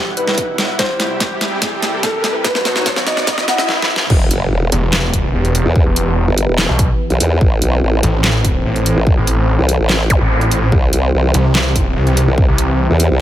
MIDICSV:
0, 0, Header, 1, 10, 480
1, 0, Start_track
1, 0, Key_signature, 1, "minor"
1, 0, Tempo, 413793
1, 918, Time_signature, 4, 2, 24, 8
1, 15325, End_track
2, 0, Start_track
2, 0, Title_t, "Grand piano"
2, 0, Program_c, 0, 0
2, 197, Note_on_c, 0, 71, 92
2, 823, Note_off_c, 0, 71, 0
2, 917, Note_on_c, 0, 72, 101
2, 1543, Note_off_c, 0, 72, 0
2, 2358, Note_on_c, 0, 69, 91
2, 2722, Note_off_c, 0, 69, 0
2, 2838, Note_on_c, 0, 71, 99
2, 3464, Note_off_c, 0, 71, 0
2, 3556, Note_on_c, 0, 75, 89
2, 3921, Note_off_c, 0, 75, 0
2, 4038, Note_on_c, 0, 78, 91
2, 4663, Note_off_c, 0, 78, 0
2, 15325, End_track
3, 0, Start_track
3, 0, Title_t, "Supersaw synth"
3, 0, Program_c, 1, 81
3, 0, Note_on_c, 1, 47, 87
3, 0, Note_on_c, 1, 55, 82
3, 0, Note_on_c, 1, 64, 81
3, 0, Note_on_c, 1, 78, 99
3, 871, Note_off_c, 1, 47, 0
3, 871, Note_off_c, 1, 78, 0
3, 880, Note_off_c, 1, 55, 0
3, 917, Note_on_c, 1, 55, 82
3, 918, Note_on_c, 1, 48, 87
3, 918, Note_on_c, 1, 67, 96
3, 2791, Note_off_c, 1, 64, 0
3, 2818, Note_off_c, 1, 48, 0
3, 2818, Note_off_c, 1, 55, 0
3, 2818, Note_off_c, 1, 67, 0
3, 2837, Note_on_c, 1, 47, 88
3, 2837, Note_on_c, 1, 54, 81
3, 2837, Note_on_c, 1, 63, 81
3, 2837, Note_on_c, 1, 66, 94
3, 4263, Note_off_c, 1, 47, 0
3, 4263, Note_off_c, 1, 54, 0
3, 4263, Note_off_c, 1, 63, 0
3, 4263, Note_off_c, 1, 66, 0
3, 4757, Note_on_c, 1, 52, 88
3, 4758, Note_on_c, 1, 59, 83
3, 4758, Note_on_c, 1, 67, 85
3, 4758, Note_on_c, 1, 71, 99
3, 8559, Note_off_c, 1, 59, 0
3, 8559, Note_off_c, 1, 67, 0
3, 8560, Note_off_c, 1, 71, 0
3, 8599, Note_on_c, 1, 60, 82
3, 8599, Note_on_c, 1, 69, 80
3, 8600, Note_on_c, 1, 72, 96
3, 12391, Note_off_c, 1, 52, 0
3, 12400, Note_off_c, 1, 60, 0
3, 12400, Note_off_c, 1, 69, 0
3, 12439, Note_on_c, 1, 52, 91
3, 12439, Note_on_c, 1, 60, 82
3, 12439, Note_on_c, 1, 67, 83
3, 15325, Note_off_c, 1, 52, 0
3, 15325, Note_off_c, 1, 60, 0
3, 15325, Note_off_c, 1, 67, 0
3, 15325, Note_off_c, 1, 72, 0
3, 15325, End_track
4, 0, Start_track
4, 0, Title_t, "Wobble bass"
4, 0, Program_c, 2, 39
4, 4757, Note_on_c, 2, 28, 101
4, 4978, Note_off_c, 2, 28, 0
4, 4997, Note_on_c, 2, 30, 100
4, 5218, Note_off_c, 2, 30, 0
4, 5237, Note_on_c, 2, 28, 99
4, 5459, Note_off_c, 2, 28, 0
4, 6559, Note_on_c, 2, 40, 96
4, 6780, Note_off_c, 2, 40, 0
4, 7280, Note_on_c, 2, 31, 97
4, 7500, Note_off_c, 2, 31, 0
4, 7519, Note_on_c, 2, 28, 98
4, 7740, Note_off_c, 2, 28, 0
4, 8239, Note_on_c, 2, 35, 100
4, 8338, Note_off_c, 2, 35, 0
4, 8357, Note_on_c, 2, 40, 101
4, 8578, Note_off_c, 2, 40, 0
4, 8597, Note_on_c, 2, 33, 99
4, 8819, Note_off_c, 2, 33, 0
4, 8837, Note_on_c, 2, 35, 97
4, 9058, Note_off_c, 2, 35, 0
4, 9077, Note_on_c, 2, 33, 98
4, 9298, Note_off_c, 2, 33, 0
4, 10400, Note_on_c, 2, 33, 99
4, 10620, Note_off_c, 2, 33, 0
4, 11120, Note_on_c, 2, 36, 100
4, 11341, Note_off_c, 2, 36, 0
4, 11359, Note_on_c, 2, 33, 97
4, 11820, Note_off_c, 2, 33, 0
4, 12438, Note_on_c, 2, 36, 108
4, 12659, Note_off_c, 2, 36, 0
4, 12677, Note_on_c, 2, 36, 101
4, 12899, Note_off_c, 2, 36, 0
4, 12918, Note_on_c, 2, 36, 100
4, 13139, Note_off_c, 2, 36, 0
4, 14240, Note_on_c, 2, 36, 100
4, 14460, Note_off_c, 2, 36, 0
4, 14960, Note_on_c, 2, 40, 97
4, 15180, Note_off_c, 2, 40, 0
4, 15201, Note_on_c, 2, 36, 98
4, 15325, Note_off_c, 2, 36, 0
4, 15325, End_track
5, 0, Start_track
5, 0, Title_t, "Detuned saw bass"
5, 0, Program_c, 3, 39
5, 5477, Note_on_c, 3, 28, 93
5, 6178, Note_off_c, 3, 28, 0
5, 6197, Note_on_c, 3, 28, 93
5, 6540, Note_off_c, 3, 28, 0
5, 6799, Note_on_c, 3, 28, 92
5, 7260, Note_off_c, 3, 28, 0
5, 7760, Note_on_c, 3, 35, 96
5, 7980, Note_off_c, 3, 35, 0
5, 9317, Note_on_c, 3, 33, 99
5, 10018, Note_off_c, 3, 33, 0
5, 10038, Note_on_c, 3, 33, 93
5, 10380, Note_off_c, 3, 33, 0
5, 10640, Note_on_c, 3, 33, 96
5, 11101, Note_off_c, 3, 33, 0
5, 11840, Note_on_c, 3, 33, 94
5, 12419, Note_off_c, 3, 33, 0
5, 13157, Note_on_c, 3, 36, 91
5, 13859, Note_off_c, 3, 36, 0
5, 13877, Note_on_c, 3, 36, 97
5, 14220, Note_off_c, 3, 36, 0
5, 14480, Note_on_c, 3, 36, 101
5, 14941, Note_off_c, 3, 36, 0
5, 15325, End_track
6, 0, Start_track
6, 0, Title_t, "Impact"
6, 0, Program_c, 4, 103
6, 4757, Note_on_c, 4, 60, 72
6, 6677, Note_off_c, 4, 60, 0
6, 15325, End_track
7, 0, Start_track
7, 0, Title_t, "Riser"
7, 0, Program_c, 5, 103
7, 0, Note_on_c, 5, 60, 75
7, 4277, Note_off_c, 5, 60, 0
7, 15325, End_track
8, 0, Start_track
8, 0, Title_t, "Swell"
8, 0, Program_c, 6, 103
8, 3797, Note_on_c, 6, 60, 78
8, 4757, Note_off_c, 6, 60, 0
8, 15325, End_track
9, 0, Start_track
9, 0, Title_t, "Zap"
9, 0, Program_c, 7, 103
9, 11717, Note_on_c, 7, 60, 61
9, 11840, Note_off_c, 7, 60, 0
9, 15325, End_track
10, 0, Start_track
10, 0, Title_t, "Drums"
10, 197, Note_on_c, 9, 42, 53
10, 313, Note_off_c, 9, 42, 0
10, 319, Note_on_c, 9, 38, 60
10, 435, Note_off_c, 9, 38, 0
10, 437, Note_on_c, 9, 36, 95
10, 437, Note_on_c, 9, 42, 80
10, 553, Note_off_c, 9, 36, 0
10, 553, Note_off_c, 9, 42, 0
10, 677, Note_on_c, 9, 38, 75
10, 677, Note_on_c, 9, 42, 52
10, 793, Note_off_c, 9, 38, 0
10, 793, Note_off_c, 9, 42, 0
10, 917, Note_on_c, 9, 36, 105
10, 917, Note_on_c, 9, 38, 76
10, 917, Note_on_c, 9, 42, 85
10, 1033, Note_off_c, 9, 36, 0
10, 1033, Note_off_c, 9, 38, 0
10, 1033, Note_off_c, 9, 42, 0
10, 1157, Note_on_c, 9, 38, 78
10, 1157, Note_on_c, 9, 42, 56
10, 1273, Note_off_c, 9, 38, 0
10, 1273, Note_off_c, 9, 42, 0
10, 1397, Note_on_c, 9, 36, 104
10, 1397, Note_on_c, 9, 38, 82
10, 1397, Note_on_c, 9, 42, 87
10, 1513, Note_off_c, 9, 36, 0
10, 1513, Note_off_c, 9, 38, 0
10, 1513, Note_off_c, 9, 42, 0
10, 1637, Note_on_c, 9, 38, 81
10, 1637, Note_on_c, 9, 42, 57
10, 1753, Note_off_c, 9, 38, 0
10, 1753, Note_off_c, 9, 42, 0
10, 1877, Note_on_c, 9, 36, 97
10, 1877, Note_on_c, 9, 38, 89
10, 1877, Note_on_c, 9, 42, 85
10, 1993, Note_off_c, 9, 36, 0
10, 1993, Note_off_c, 9, 38, 0
10, 1993, Note_off_c, 9, 42, 0
10, 2117, Note_on_c, 9, 38, 86
10, 2117, Note_on_c, 9, 42, 55
10, 2233, Note_off_c, 9, 38, 0
10, 2233, Note_off_c, 9, 42, 0
10, 2357, Note_on_c, 9, 36, 95
10, 2357, Note_on_c, 9, 38, 86
10, 2357, Note_on_c, 9, 42, 81
10, 2473, Note_off_c, 9, 36, 0
10, 2473, Note_off_c, 9, 38, 0
10, 2473, Note_off_c, 9, 42, 0
10, 2597, Note_on_c, 9, 38, 90
10, 2597, Note_on_c, 9, 42, 52
10, 2713, Note_off_c, 9, 38, 0
10, 2713, Note_off_c, 9, 42, 0
10, 2836, Note_on_c, 9, 38, 94
10, 2836, Note_on_c, 9, 42, 82
10, 2837, Note_on_c, 9, 36, 102
10, 2952, Note_off_c, 9, 38, 0
10, 2952, Note_off_c, 9, 42, 0
10, 2953, Note_off_c, 9, 36, 0
10, 2959, Note_on_c, 9, 38, 82
10, 3075, Note_off_c, 9, 38, 0
10, 3077, Note_on_c, 9, 38, 98
10, 3077, Note_on_c, 9, 42, 58
10, 3193, Note_off_c, 9, 38, 0
10, 3193, Note_off_c, 9, 42, 0
10, 3199, Note_on_c, 9, 38, 90
10, 3315, Note_off_c, 9, 38, 0
10, 3317, Note_on_c, 9, 36, 102
10, 3317, Note_on_c, 9, 38, 102
10, 3317, Note_on_c, 9, 42, 84
10, 3433, Note_off_c, 9, 36, 0
10, 3433, Note_off_c, 9, 38, 0
10, 3433, Note_off_c, 9, 42, 0
10, 3439, Note_on_c, 9, 38, 84
10, 3555, Note_off_c, 9, 38, 0
10, 3556, Note_on_c, 9, 38, 106
10, 3556, Note_on_c, 9, 42, 54
10, 3672, Note_off_c, 9, 38, 0
10, 3672, Note_off_c, 9, 42, 0
10, 3679, Note_on_c, 9, 38, 88
10, 3795, Note_off_c, 9, 38, 0
10, 3796, Note_on_c, 9, 38, 107
10, 3796, Note_on_c, 9, 42, 87
10, 3797, Note_on_c, 9, 36, 97
10, 3912, Note_off_c, 9, 38, 0
10, 3912, Note_off_c, 9, 42, 0
10, 3913, Note_off_c, 9, 36, 0
10, 3918, Note_on_c, 9, 38, 90
10, 4034, Note_off_c, 9, 38, 0
10, 4036, Note_on_c, 9, 38, 104
10, 4036, Note_on_c, 9, 42, 58
10, 4152, Note_off_c, 9, 38, 0
10, 4152, Note_off_c, 9, 42, 0
10, 4158, Note_on_c, 9, 38, 95
10, 4274, Note_off_c, 9, 38, 0
10, 4276, Note_on_c, 9, 38, 72
10, 4392, Note_off_c, 9, 38, 0
10, 4436, Note_on_c, 9, 38, 88
10, 4552, Note_off_c, 9, 38, 0
10, 4596, Note_on_c, 9, 38, 100
10, 4712, Note_off_c, 9, 38, 0
10, 4756, Note_on_c, 9, 49, 105
10, 4757, Note_on_c, 9, 36, 122
10, 4872, Note_off_c, 9, 49, 0
10, 4873, Note_off_c, 9, 36, 0
10, 4997, Note_on_c, 9, 42, 84
10, 5113, Note_off_c, 9, 42, 0
10, 5477, Note_on_c, 9, 42, 85
10, 5593, Note_off_c, 9, 42, 0
10, 5717, Note_on_c, 9, 38, 127
10, 5717, Note_on_c, 9, 39, 98
10, 5833, Note_off_c, 9, 38, 0
10, 5833, Note_off_c, 9, 39, 0
10, 5957, Note_on_c, 9, 36, 61
10, 5957, Note_on_c, 9, 42, 84
10, 6073, Note_off_c, 9, 36, 0
10, 6073, Note_off_c, 9, 42, 0
10, 6319, Note_on_c, 9, 42, 39
10, 6435, Note_off_c, 9, 42, 0
10, 6436, Note_on_c, 9, 42, 83
10, 6552, Note_off_c, 9, 42, 0
10, 6677, Note_on_c, 9, 36, 127
10, 6793, Note_off_c, 9, 36, 0
10, 6917, Note_on_c, 9, 42, 83
10, 7033, Note_off_c, 9, 42, 0
10, 7396, Note_on_c, 9, 42, 83
10, 7512, Note_off_c, 9, 42, 0
10, 7636, Note_on_c, 9, 38, 127
10, 7636, Note_on_c, 9, 39, 97
10, 7752, Note_off_c, 9, 38, 0
10, 7752, Note_off_c, 9, 39, 0
10, 7876, Note_on_c, 9, 42, 81
10, 7877, Note_on_c, 9, 36, 112
10, 7992, Note_off_c, 9, 42, 0
10, 7993, Note_off_c, 9, 36, 0
10, 8239, Note_on_c, 9, 42, 37
10, 8355, Note_off_c, 9, 42, 0
10, 8357, Note_on_c, 9, 42, 85
10, 8473, Note_off_c, 9, 42, 0
10, 8597, Note_on_c, 9, 36, 127
10, 8713, Note_off_c, 9, 36, 0
10, 8837, Note_on_c, 9, 42, 77
10, 8953, Note_off_c, 9, 42, 0
10, 9317, Note_on_c, 9, 42, 79
10, 9433, Note_off_c, 9, 42, 0
10, 9557, Note_on_c, 9, 38, 127
10, 9557, Note_on_c, 9, 39, 93
10, 9673, Note_off_c, 9, 38, 0
10, 9673, Note_off_c, 9, 39, 0
10, 9797, Note_on_c, 9, 36, 66
10, 9797, Note_on_c, 9, 42, 78
10, 9913, Note_off_c, 9, 36, 0
10, 9913, Note_off_c, 9, 42, 0
10, 10160, Note_on_c, 9, 42, 37
10, 10276, Note_off_c, 9, 42, 0
10, 10277, Note_on_c, 9, 42, 77
10, 10393, Note_off_c, 9, 42, 0
10, 10517, Note_on_c, 9, 36, 125
10, 10633, Note_off_c, 9, 36, 0
10, 10758, Note_on_c, 9, 42, 78
10, 10874, Note_off_c, 9, 42, 0
10, 11237, Note_on_c, 9, 42, 79
10, 11353, Note_off_c, 9, 42, 0
10, 11477, Note_on_c, 9, 38, 127
10, 11477, Note_on_c, 9, 39, 91
10, 11593, Note_off_c, 9, 38, 0
10, 11593, Note_off_c, 9, 39, 0
10, 11717, Note_on_c, 9, 42, 78
10, 11718, Note_on_c, 9, 36, 117
10, 11833, Note_off_c, 9, 42, 0
10, 11834, Note_off_c, 9, 36, 0
10, 12079, Note_on_c, 9, 42, 36
10, 12195, Note_off_c, 9, 42, 0
10, 12197, Note_on_c, 9, 42, 77
10, 12313, Note_off_c, 9, 42, 0
10, 12438, Note_on_c, 9, 36, 124
10, 12554, Note_off_c, 9, 36, 0
10, 12677, Note_on_c, 9, 42, 80
10, 12793, Note_off_c, 9, 42, 0
10, 13157, Note_on_c, 9, 42, 79
10, 13273, Note_off_c, 9, 42, 0
10, 13397, Note_on_c, 9, 38, 127
10, 13397, Note_on_c, 9, 39, 91
10, 13513, Note_off_c, 9, 38, 0
10, 13513, Note_off_c, 9, 39, 0
10, 13637, Note_on_c, 9, 42, 76
10, 13638, Note_on_c, 9, 36, 61
10, 13753, Note_off_c, 9, 42, 0
10, 13754, Note_off_c, 9, 36, 0
10, 14000, Note_on_c, 9, 42, 37
10, 14116, Note_off_c, 9, 42, 0
10, 14117, Note_on_c, 9, 42, 78
10, 14233, Note_off_c, 9, 42, 0
10, 14358, Note_on_c, 9, 36, 119
10, 14474, Note_off_c, 9, 36, 0
10, 14597, Note_on_c, 9, 42, 84
10, 14713, Note_off_c, 9, 42, 0
10, 15077, Note_on_c, 9, 42, 82
10, 15193, Note_off_c, 9, 42, 0
10, 15325, End_track
0, 0, End_of_file